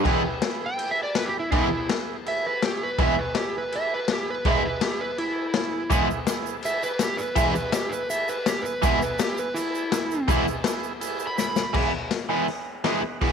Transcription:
0.03 E3 G#3 B3 E4 G#4, kick, crash
0.09 B4
0.42 E4 G#4 B4, snare, crash
0.66 G5
0.76 E4 G#4 B4, crash
0.91 E5
1.03 D5
1.15 E4 G#4 B4, snare, crash
1.26 G4
1.40 E4
1.51 E3 G#3 B3 E4 G#4 B4, kick, crash
1.88 E4 G#4 B4, snare, crash
2.26 E4 G#4 B4 E5, crash
2.46 B4
2.62 E4 G4 G#4 C#5, snare, crash
2.83 B4
2.99 E3 G#3 B3 E4 G#4 C#5, kick, crash
3.03 E5
3.19 B4
3.35 E4 G4 G#4 B4, snare, crash
3.58 B4
3.72 E4 G#4 B4, crash
3.76 E5
3.94 B4
4.08 E4 G#4, snare, crash
4.12 G4 B4
4.30 B4
4.45 E3 G#3 B3 E4 B4, kick, crash
4.49 E4 G#4 E5
4.65 B4
4.81 E4 G4 G#4 B4, snare, crash
5.00 B4
5.18 E4 G#4 B4, crash
5.54 E4 G#4 B4, snare, crash
5.90 E3 G#3 B3 E4 G#4 B4, kick, crash, shaker
6.11 shaker
6.27 E4 G#4 B4, snare, crash, shaker
6.46 shaker
6.63 E4 G#4 B4 E5, crash, shaker
6.83 B4, shaker
6.99 E4 G#4 B4, snare, crash, shaker
7.04 G4
7.17 B4, shaker
7.36 E3 G#3 B3 E4 G#4 B4 E5, kick, crash, shaker
7.54 B4, shaker
7.72 E4 G4 G#4 B4, snare, crash, shaker
7.89 B4, shaker
8.10 E4 G#4 B4 E5, crash, shaker
8.28 B4, shaker
8.46 E4 G4 G#4 B4, snare, crash, shaker
8.62 B4, shaker
8.82 E3 G#3 B3 E4 G#4 B4 E5, kick, crash, shaker
9.02 B4, shaker
9.19 E4 G4 B4, snare, crash, shaker
9.23 G#4
9.37 B4, shaker
9.54 E4 G#4 B4, crash, shaker
9.75 shaker
9.90 E4 G#4 B4, snare, crash, shaker
10.11 shaker
10.27 E3 G#3 B3 E4 G#4 B4, kick, crash, shaker
10.48 shaker
10.64 E4 G#4 B4, snare, crash, shaker
10.84 shaker
11.00 E4 G#4 B4, crash, shaker
11.20 shaker
11.27 B5
11.35 E4 G#4 B4, snare, shaker
11.40 B5
11.56 snare, shaker
11.74 E3 G#3 B3 E4, kick, crash
12.11 snare, open hi-hat
12.29 E3 G#3 B3 E4
12.48 open hi-hat
12.84 E3 G#3 B3 E4, snare, open hi-hat
13.21 E3 G#3 B3 E4, kick, open hi-hat

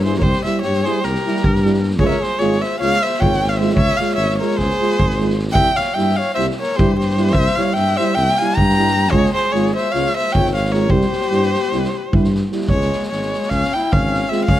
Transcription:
Already playing: G2
0.04 G3 E4 G#4 C5, snare
0.14 A#4, snare
0.19 C2 C#5, kick
0.23 G4 C5
0.33 snare
0.45 G3 E4 C5 E5, snare
0.61 G2 G4 C#5, snare
0.73 snare
0.83 G3 E4 G#4 C5, snare
1.01 C2 G4 A#4, snare
1.15 snare
1.26 G3 E4, snare
1.36 snare
1.44 G2, kick
1.55 snare
1.64 G3 E4, snare
1.73 snare
1.83 snare
1.90 snare
1.99 C#2 G#3 F4 G#4 C#5, kick
2.05 A#4 C5 E5
2.09 C#5, snare
2.21 G#4 C5, snare
2.37 G#1 G#3 F4 G#4 C#5, snare
2.52 snare
2.60 C5 E5, snare
2.79 C#2 G#3 F4 C#5 F5, snare
2.92 snare
3.02 C5 E5, snare
3.14 snare
3.20 G#1 G#3 F4 C#5 G5, kick
3.33 snare
3.43 snare
3.48 C#5 F5, snare
3.57 G#3 F4 C5 E5, snare
3.69 snare
3.74 C#2 C#5 E5, kick
3.89 snare
3.97 G#3 F4 C#5 F5, snare
4.09 snare
4.15 G#1 C#5 E5, snare
4.30 snare
4.38 G#3 F4 A#4 C#5, snare
4.51 snare
4.56 C#2 G#4 C5, kick, snare
4.70 snare
4.81 G#3 F4, snare
4.90 snare
5.00 G#1, kick
5.10 snare
5.20 G#3 F4, snare
5.30 snare
5.39 snare
5.48 snare
5.52 C2 G3 E4 E5 G5, kick
5.76 C#5 F5, snare
5.94 G2 G3 E4 E5 G5
5.98 snare
6.09 snare
6.16 C#5 F5
6.20 snare
6.35 C2 G3 E4 C5 E5
6.39 snare
6.51 snare
6.60 A#4 C#5, snare
6.72 snare
6.76 G2 G3 E4 G4 C5, kick
6.96 G4 C5
7.00 snare
7.09 snare
7.17 G3 E4, snare
7.27 snare
7.33 C2 C5 E5, kick
7.46 snare
7.55 G3 E4 C#5 F5, snare
7.73 G2 E5 G5, snare
7.86 snare
7.97 G3 E4 C5 E5, snare
8.14 C2 E5 G5, snare
8.28 snare
8.37 G3 E4 F5 G#5, snare
8.49 snare
8.55 G2 G5 A#5, kick
8.69 snare
8.78 G3 E4, snare
8.87 snare
8.95 snare
9.04 snare
9.11 C#2 G#3 F4 G#4 C#5, kick
9.25 snare
9.34 G#4 C5, snare
9.49 G#1 G#4 C#5
9.54 G#3 F4, snare
9.66 snare
9.75 C5 E5, snare
9.92 C#2 G#3 F4 C#5 F5, snare
10.06 snare
10.15 C5 E5, snare
10.27 snare
10.32 G#1 G#3 F4 C#5 G5, kick
10.45 snare
10.52 C#5 F5
10.56 snare
10.65 snare
10.72 G#3 F4 A#4 C#5, snare
10.89 C2 G3 E4 G4 C5, kick
11.01 snare
11.13 snare
11.21 snare
11.31 G2 G3 E4, snare
11.42 snare
11.54 snare
11.63 snare
11.72 C2 G3 E4, snare
11.84 snare
12.13 G2 G3 E4, kick
12.24 snare
12.35 snare
12.52 G3 E4, snare
12.60 snare
12.69 C#2 G#3 C#5, kick
12.81 snare
12.92 snare
13.03 snare
13.08 G#1 G#3 C#5, snare
13.22 snare
13.33 snare
13.42 snare
13.49 C#2 C#4 F5, kick, snare
13.63 snare
13.74 E4 G5, snare
13.92 G#1 C#4 F5, kick
14.14 snare
14.29 G#3 C4 F4 E5, snare
14.45 C#2 C#4 F5, kick

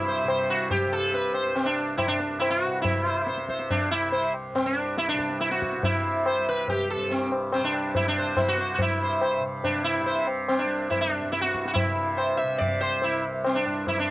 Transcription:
Already playing: C2 G2 C3 E4
0.08 C5
0.24 C3
0.28 C5, tabla na
0.50 F#4
0.71 G4, tabla tin, tabla ge
0.85 C3
0.93 A4
1.14 B4, tabla tin
1.34 C5, tabla na
1.47 C2
1.56 C4, tabla na
1.65 D4
1.97 E4, tabla na, tabla ge
2.08 G2 D4
2.20 tabla te
2.39 E4, tabla na
2.50 F#4
2.67 C3
2.82 E4, tabla tin, tabla ge
3.06 C5
3.27 C3 C5, tabla te
3.38 tabla te
3.49 C5, tabla ke
3.59 tabla te
3.70 D4, tabla tin, tabla ge
3.90 C2 E4
4.12 C5, tabla tin
4.34 tabla na
4.53 G2 C4, tabla na
4.66 D4
4.98 E4, tabla te
5.09 D4, tabla te
5.14 C3
5.19 tabla ke
5.30 tabla te
5.40 E4, tabla te
5.51 F#4, tabla te
5.62 tabla ke
5.73 C3, tabla te
5.83 E4, tabla tin, tabla ge
6.26 C5, tabla na
6.36 C2
6.49 B4
6.68 G4, tabla tin, tabla ge
6.90 A4
6.96 G2
7.10 C4, tabla tin
7.32 tabla na
7.52 C4 C5, tabla na
7.60 C3
7.64 D4
7.74 tabla na
7.95 E4, tabla tin, tabla ge
8.08 D4
8.18 C3 C5
8.37 E4 C5, tabla na, tabla ge
8.48 F#4
8.58 C5, tabla te
8.74 F#4
8.79 G2 E4, tabla tin, tabla ge
9.03 C5
9.21 C5, tabla na
9.40 C3
9.64 D4, tabla tin, tabla ge
9.84 E4
10.01 C3
10.06 C5, tabla tin
10.27 tabla na
10.48 C4, tabla na
10.58 D4
10.64 C2
10.90 E4, tabla tin, tabla ge
11.01 D4
11.22 G2
11.32 E4, tabla te
11.41 F#4, tabla te
11.55 tabla ke
11.65 F#4, tabla te
11.74 E4, tabla tin, tabla ge
11.83 C3
12.17 C5, tabla na
12.37 E5
12.44 C3
12.58 D5, tabla tin, tabla ge
12.81 C5, tabla na
13.02 C2 E4, tabla tin
13.44 C4, tabla na
13.55 D4
13.65 G2, tabla na
13.87 E4, tabla tin, tabla ge
13.99 D4

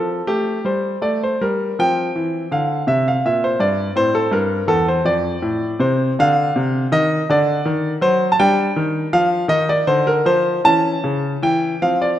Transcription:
Already playing: F3 C4 A4
0.27 A3 G4
0.65 G3 C5
1.02 A3 D5
1.23 C5
1.41 G3 A#4
1.79 F3 C4 G5
2.16 E3
2.51 D3 F5
2.87 C3 E5
3.08 F5
3.25 A#2 E5
3.44 C5
3.59 G2 D5
3.96 A2 C4 C5
4.15 A4
4.31 G2 A#4
4.68 E2 A4
4.88 C5
5.05 F2 D5
5.42 A2
5.80 C3 C5
6.19 D3 D4 F5
6.56 C3
6.92 D#3 D#5
7.30 D3 D4 D5
7.65 D#3
8.01 F#3 C5
8.32 A5
8.40 G3 D4 G5
8.76 D#3
9.13 F3 F5
9.48 D#3 D#4 D#5
9.69 D5
9.87 D3 C5
10.07 A#4
10.26 F3 C5
10.64 E3 C#4 A5
11.04 C#3
11.42 E3 G5
11.82 F3 C4 F5
12.02 D5

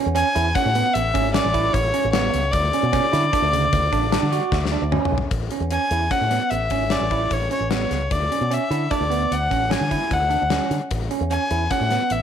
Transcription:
0.06 E2
0.15 C#4 G#5, closed hi-hat
0.35 E2 E4, closed hi-hat
0.55 C#4 F#5, kick, closed hi-hat
0.65 A2
0.75 B3, closed hi-hat
0.94 A1 E5, closed hi-hat
1.14 G#1 C#4, kick, closed hi-hat
1.34 C#4 D5, snare, closed hi-hat
1.44 A1
1.54 E4, kick, closed hi-hat
1.73 A1 C#5, kick, closed hi-hat
1.94 C#4, closed hi-hat
2.04 A1
2.12 B3 C#5, snare, closed hi-hat
2.34 C#2, closed hi-hat
2.52 D2 D5, kick, closed hi-hat
2.73 C#4, closed hi-hat
2.83 B2
2.93 C#4, kick, snare, closed hi-hat
3.13 D3 E4, snare, closed hi-hat
3.33 D4, kick, closed hi-hat
3.42 D2
3.53 C#3, closed hi-hat
3.73 D2, kick, closed hi-hat
3.93 A1 D4, kick, closed hi-hat
4.12 D4, snare, closed hi-hat
4.22 D3
4.32 F#4, closed hi-hat
4.52 D2, kick, snare
4.66 snare
4.72 D4
4.82 D2
4.92 C#4, mid tom
5.05 mid tom
5.12 B1
5.18 floor tom
5.31 A1, kick, closed hi-hat
5.51 C#4, closed hi-hat
5.60 E2
5.71 C#4 G#5, closed hi-hat
5.91 E2 E4, closed hi-hat
6.11 C#4 F#5, kick, closed hi-hat
6.21 A2
6.31 B3, snare, closed hi-hat
6.50 A1 E5, closed hi-hat
6.70 G#1 C#4, kick, closed hi-hat
6.90 C#4 D5, snare, closed hi-hat
7.01 A1
7.11 E4, kick, closed hi-hat
7.31 A1 C#5, kick, closed hi-hat
7.51 C#4 C#5, closed hi-hat
7.60 A1
7.71 B3 C#5, snare, closed hi-hat
7.91 C#2, snare, closed hi-hat
8.11 D2 D5, kick, closed hi-hat
8.32 C#4, closed hi-hat
8.41 B2
8.51 C#4 E5, closed hi-hat
8.70 D3 E4, closed hi-hat
8.91 D4 D5, kick, closed hi-hat
9.01 D2
9.10 B3, closed hi-hat
9.31 D2 F#5, closed hi-hat
9.51 A1 C#4, kick, closed hi-hat
9.70 C#4 G#5, snare, closed hi-hat
9.81 D3
9.91 E4, kick, closed hi-hat
10.11 D2 F#5, kick, closed hi-hat
10.30 D4, closed hi-hat
10.42 D2
10.50 C#4, snare, closed hi-hat
10.71 D3, closed hi-hat
10.91 A1, kick, closed hi-hat
11.11 C#4, closed hi-hat
11.21 E2
11.31 C#4 G#5, closed hi-hat
11.51 E2 E4, closed hi-hat
11.71 C#4 F#5, kick, closed hi-hat
11.80 A2
11.90 B3, snare, closed hi-hat
12.10 A1 E5, closed hi-hat

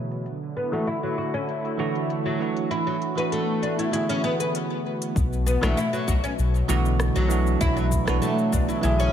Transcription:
Already playing: B2 D3 E3 F#3 A3 G#4
0.12 closed hi-hat
0.26 D3, closed hi-hat
0.53 B3 E4, closed hi-hat
0.60 F#4
0.72 E3 A3 D4 F#4, closed hi-hat
0.87 E4, closed hi-hat
1.03 F#3
1.18 F#4
1.34 C#4, closed hi-hat
1.49 closed hi-hat
1.65 closed hi-hat
1.78 D3 E3 A3 F#4
1.95 closed hi-hat
2.10 closed hi-hat
2.26 F#3
2.38 E3 A3 D4
2.42 F#4
2.57 closed hi-hat
2.71 E3 E4, closed hi-hat
2.87 F#3 A3
3.02 closed hi-hat
3.15 E3 A3 D4 F#4 B4, closed hi-hat
3.27 B3
3.32 A3, closed hi-hat
3.63 D4, closed hi-hat
3.79 E4, closed hi-hat
3.91 D3 E3 A3 E4, closed hi-hat
3.95 G#4
4.09 C#4, closed hi-hat
4.24 B3
4.40 B4, closed hi-hat
4.55 closed hi-hat
5.02 closed hi-hat
5.16 B1 B2, kick, cabasa
5.33 cabasa
5.46 B3, cabasa
5.62 B1 E3 A3 D4 F#4, cross-stick, cabasa
5.77 F#3 E4, cabasa
5.93 F#3, cabasa
6.08 B1 F#4, kick, cabasa
6.24 C#4, cabasa
6.38 B1, cabasa
6.55 cabasa
6.68 B1 D3 E3 A3 F#4, cabasa
6.86 cabasa
7.00 cross-stick, cabasa
7.16 B1 F#3, cabasa
7.28 E3 A3 D4, cabasa
7.32 F#4
7.47 cabasa
7.61 B1 E4, kick, cabasa
7.77 F#3, cabasa
7.92 kick, cabasa
8.05 B1 E3 A3 D4 F#4 B4, cross-stick, cabasa
8.22 A3, cabasa
8.39 cabasa
8.52 B1 D4, kick, cabasa
8.69 E4, cabasa
8.81 B1 D3 E3 A3 E4 G#4, cabasa
9.00 C#4, cabasa

